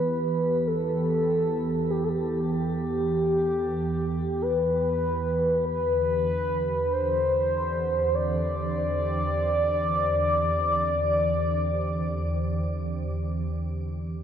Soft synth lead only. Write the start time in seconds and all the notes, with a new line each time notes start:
Already playing: B4
0.67 A4
1.90 G4
2.04 A4
2.09 G4
4.42 B4
5.65 B4
6.93 C5
8.15 D5